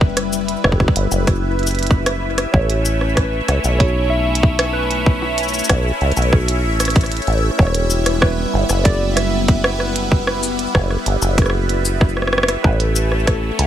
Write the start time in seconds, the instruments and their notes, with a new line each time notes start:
Already playing: acid bass F#1, analog synth pad G3 E4 B4 E5, synth keys B4
0.01 kick
0.17 cross-stick, closed hi-hat
0.33 cabasa
0.48 closed hi-hat
0.64 acid bass F#1, kick, cross-stick
0.72 kick
0.80 kick, cross-stick
0.88 kick
0.96 acid bass G1, closed hi-hat
1.12 acid bass F#1, cabasa
1.27 kick, cross-stick, closed hi-hat
1.59 closed hi-hat
1.63 closed hi-hat
1.67 closed hi-hat, cabasa
1.71 closed hi-hat
1.75 closed hi-hat
1.79 closed hi-hat
1.83 closed hi-hat
1.87 kick, cross-stick, closed hi-hat
2.06 cross-stick, closed hi-hat
2.38 cross-stick, closed hi-hat
2.52 acid bass A1, analog synth pad A3, synth keys C#5, kick
2.60 analog synth pad C#4
2.70 closed hi-hat
2.85 cabasa
3.01 cross-stick
3.15 synth keys B4, analog synth pad C#5, kick, cross-stick, closed hi-hat
3.48 acid bass C#2, cross-stick, closed hi-hat
3.64 acid bass B1, cabasa
3.78 synth keys C#5, kick, closed hi-hat
4.10 synth keys E5
4.35 closed hi-hat
4.43 kick
4.59 cross-stick, closed hi-hat
4.73 synth keys B4
4.91 closed hi-hat
5.06 kick
5.22 cross-stick
5.38 closed hi-hat, cabasa
5.43 cabasa
5.48 cabasa
5.54 cabasa
5.59 cabasa
5.64 cabasa
5.69 acid bass B1, kick, cross-stick, closed hi-hat
6.01 acid bass C#2, closed hi-hat
6.12 closed hi-hat
6.17 acid bass B1, cabasa
6.22 closed hi-hat
6.33 kick, cross-stick
6.48 closed hi-hat
6.64 acid bass A1
6.80 cross-stick, closed hi-hat, cabasa
6.85 cross-stick, closed hi-hat
6.90 closed hi-hat
6.96 kick, cross-stick, closed hi-hat
7.01 cross-stick, closed hi-hat
7.06 closed hi-hat
7.12 closed hi-hat
7.17 closed hi-hat
7.22 closed hi-hat
7.27 acid bass A1, closed hi-hat
7.33 closed hi-hat
7.38 closed hi-hat
7.43 cross-stick
7.51 cross-stick
7.58 acid bass E1, analog synth pad G3, synth keys C#5, kick, cross-stick
7.67 cross-stick
7.75 closed hi-hat
7.85 analog synth pad B3
7.90 cabasa
8.06 cross-stick, closed hi-hat
8.21 synth keys B4, kick, cross-stick
8.48 analog synth pad B4
8.54 acid bass G1
8.69 acid bass F#1, cross-stick, cabasa
8.84 synth keys D5, kick, closed hi-hat
9.15 synth keys E5, cross-stick, closed hi-hat
9.48 kick, closed hi-hat
9.64 cross-stick
9.79 synth keys B4, cross-stick
9.96 closed hi-hat
10.12 kick
10.27 cross-stick
10.43 cabasa
10.59 closed hi-hat
10.75 acid bass F#1, kick, cross-stick
10.90 cross-stick
11.06 acid bass G1, closed hi-hat
11.22 acid bass F#1, cabasa
11.38 kick, cross-stick, closed hi-hat
11.42 cross-stick
11.46 cross-stick
11.50 cross-stick
11.69 closed hi-hat
11.85 cabasa
12.01 kick, cross-stick
12.17 cross-stick
12.22 cross-stick
12.27 cross-stick
12.33 cross-stick
12.38 cross-stick
12.43 cross-stick
12.48 cross-stick, closed hi-hat
12.63 acid bass A1, analog synth pad A3, synth keys B4, kick
12.80 closed hi-hat
12.87 analog synth pad C#4
12.96 cabasa
13.12 cross-stick
13.26 synth keys A4, kick, cross-stick, closed hi-hat
13.39 analog synth pad C#5
13.59 acid bass C#2, closed hi-hat